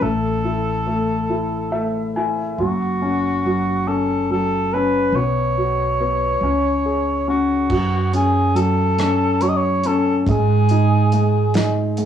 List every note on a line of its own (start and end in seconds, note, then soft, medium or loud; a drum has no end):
0.01 2.54 A1 medium
0.01 0.85 A3 medium
0.01 2.15 A4 medium
0.45 1.28 E4 soft
0.87 1.70 A3 soft
1.30 2.15 E4 soft
1.72 2.55 A3 soft
1.72 2.12 E5 medium
2.16 2.57 E4 soft
2.16 2.55 G#5 medium
2.58 5.10 F#1 medium
2.58 3.44 F#3 soft
2.58 3.89 F#4 medium
3.02 3.86 C#4 soft
3.45 4.29 F#3 soft
3.87 4.72 C#4 soft
3.87 4.29 A4 medium
4.30 5.12 F#3 soft
4.30 4.75 A4 medium
4.73 5.14 C#4 soft
4.73 5.17 B4 medium
5.12 6.39 B1 medium
5.12 5.99 B3 soft
5.12 7.29 C#5 medium
5.57 6.40 F#4 soft
6.00 6.41 B3 soft
6.41 7.67 C#2 medium
6.41 7.26 C#4 soft
6.86 7.68 G#4 soft
7.28 7.69 C#4 soft
7.28 8.10 F#4 medium
7.70 10.22 F#2 medium
7.70 8.53 F#3 soft
7.70 kick medium
7.70 crash medium
8.13 8.97 C#4 soft
8.13 8.58 G#4 medium
8.13 closed hi-hat soft
8.55 9.40 F#3 soft
8.55 9.43 A4 medium
8.55 closed hi-hat soft
8.99 9.84 C#4 soft
8.99 cross-stick medium
8.99 closed hi-hat medium
9.41 10.24 F#3 soft
9.41 9.50 C#5 medium
9.41 closed hi-hat soft
9.49 9.58 D#5 medium
9.57 9.88 C#5 medium
9.84 10.26 C#4 soft
9.84 10.17 A4 medium
9.84 closed hi-hat soft
10.26 12.05 G#2 medium
10.26 11.12 G#3 medium
10.26 11.95 G#4 medium
10.26 kick medium
10.26 closed hi-hat medium
10.69 11.54 D#4 soft
10.69 closed hi-hat soft
11.12 11.97 G#3 soft
11.12 closed hi-hat soft
11.54 12.05 D#4 soft
11.54 snare medium
11.54 closed hi-hat medium
11.97 12.05 G#3 soft
11.97 closed hi-hat soft